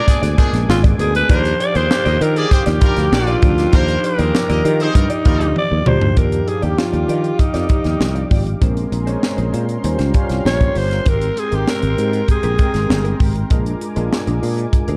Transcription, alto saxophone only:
0.00 0.38 D5 loud
0.70 0.83 F4 medium
1.00 1.14 G#4 medium
1.16 1.29 B4 loud
1.30 1.62 C5 loud
1.61 1.78 D5 loud
1.76 2.23 C5 loud
2.22 2.39 A#4 loud
2.37 2.55 G#4 medium
2.53 3.16 G4 loud
3.14 3.77 F4 loud
3.75 4.08 C5 loud
4.06 4.84 A#4 loud
4.82 5.57 D#4 medium
5.58 5.89 D5 loud
5.88 6.18 C5 loud
6.18 6.50 A#4 medium
6.48 6.65 G#4 medium
6.63 6.80 G4 medium
6.78 7.41 F4 medium
7.40 8.31 D#4 medium
10.46 10.79 C#5 medium
10.78 11.10 C5 medium
11.08 11.41 A#4 medium
11.39 11.56 G#4 medium
11.55 11.69 G4 medium
11.70 12.26 A#4 medium
12.31 13.17 G#4 medium

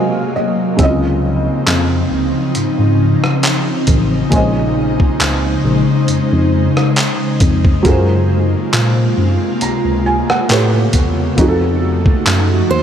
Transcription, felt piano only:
0.00 0.79 G#3 medium
0.00 0.79 F#4 medium
0.00 0.80 A#4 medium
0.00 0.80 C5 medium
0.00 0.32 D#5 medium
0.00 0.81 F5 medium
0.00 0.81 G#5 medium
0.36 0.77 D#5 medium
0.77 4.27 C#3 medium
0.77 4.28 C4 medium
0.81 0.87 E4 medium
0.81 4.30 D#5 medium
0.87 4.32 F4 medium
4.29 7.80 A#2 medium
4.29 7.81 G#3 medium
4.29 7.81 C#4 medium
4.34 7.82 C5 medium
4.34 7.83 D#5 medium
7.83 10.45 F#3 medium
7.83 10.45 F4 medium
7.83 10.46 G#4 medium
7.87 10.47 A#4 medium
7.87 10.48 C5 medium
9.62 10.04 A#5 medium
10.06 10.29 G#5 medium
10.30 10.72 F#5 medium
10.49 11.37 A3 medium
10.49 11.38 G4 medium
10.49 11.38 B4 medium
10.49 11.39 C#5 medium
11.35 12.83 F3 medium
11.35 12.83 D#4 medium
11.39 12.83 F#4 medium
11.39 11.47 G#4 medium
11.48 12.83 A4 medium

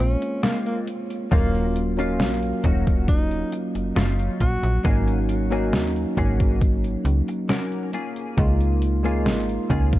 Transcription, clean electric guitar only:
0.22 muted clean electric guitar stroke soft
0.43 0.88 G#3 medium
0.43 0.88 A#3 medium
0.43 0.88 C4 medium
0.43 0.88 F4 loud
1.31 1.65 F#3 loud
1.31 1.65 C#4 loud
1.31 1.65 D#4 loud
1.31 1.65 F4 loud
1.99 2.31 F#3 medium
1.99 2.31 C#4 medium
1.99 2.31 D#4 medium
1.99 2.31 F4 loud
2.64 3.08 F#3 medium
2.64 3.08 C#4 medium
2.64 3.08 D#4 medium
2.64 3.08 F#4 medium
3.52 muted clean electric guitar stroke soft
3.75 muted clean electric guitar stroke soft
3.96 4.41 F#3 medium
3.96 4.40 C#4 medium
3.96 4.41 D#4 medium
3.96 4.41 F4 loud
4.84 5.18 A#3 loud
4.84 5.18 C#4 loud
4.84 5.18 F#4 loud
4.84 5.18 G#4 loud
5.51 5.84 A#3 medium
5.51 5.84 C#4 medium
5.51 5.84 F#4 medium
5.51 5.84 G#4 loud
6.17 6.61 A#3 medium
6.17 6.61 C#4 medium
6.17 6.61 F#4 medium
6.17 6.61 G#4 loud
7.05 muted clean electric guitar stroke soft
7.29 muted clean electric guitar stroke soft
7.49 7.92 A#3 loud
7.49 7.93 C#4 medium
7.49 7.94 F#4 medium
7.49 7.94 A#4 loud
7.94 8.82 A#3 medium
7.94 8.82 C#4 medium
7.94 8.82 F4 medium
7.94 8.82 G#4 loud
9.04 9.37 A#3 medium
9.04 9.37 C#4 medium
9.04 9.37 F4 medium
9.04 9.37 G#4 loud
9.70 9.99 A#3 medium
9.70 9.99 C#4 medium
9.70 9.99 F4 medium
9.70 9.99 G#4 medium

